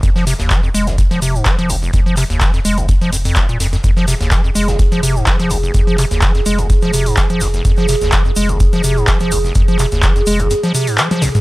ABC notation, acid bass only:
X:1
M:4/4
L:1/16
Q:"Swing 16ths" 1/4=126
K:Fm
V:1 name="Acid bass" clef=bass
F,, F, C, E,, F, F,, A, F,,, F,, F, C, A,, F, F, F,,, F,,, | F,, F, C, E,, F, F,, A, F,,, F,, F, F,, F,, F,,, B,, F,, F,, | F,, F, C, E,, F, F,, A, F,,, F,, F, C, A,, F, F, F,,, F,,, | F,, F, C, E,, F, F,, A, F,,, F,, F, C, A,, F, F, F,,, F,,, |
F,, F, C, E,, F, F,, A, F,,, F,, F, C, A,, F, F, F,,, F,,, | F,, F, C, E,, F, F,, A, F,,, F,, F, C, A,, F, F, F,,, F,,, |]